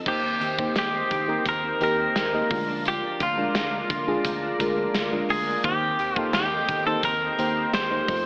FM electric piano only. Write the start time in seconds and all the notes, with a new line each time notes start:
0.06 D#3 A#3 D#4 G4 C5
0.58 A#3 D#4 G4 C5
1.28 A#3 D#4 G4 A#4
1.81 A#3 D#4 G4 A#4
2.33 A#3 D#4 G4 D#5
2.50 D3 G#3 D4 F4 A#4
3.37 G#3 D4 F4 A#4
4.07 G#3 D4 F4 G#4
4.59 G#3 D4 F4 A#4
5.12 G#3 D4 F4 A#4
5.64 D#3 A#3 D#4 G4 C5
6.16 A#3 D#4 G4 A4
6.86 A#3 D#4 G4 C5
7.38 A#3 D#4 G4 C5
7.90 A#3 D#4 G4 C5
8.08 A3 D#4 F4 C5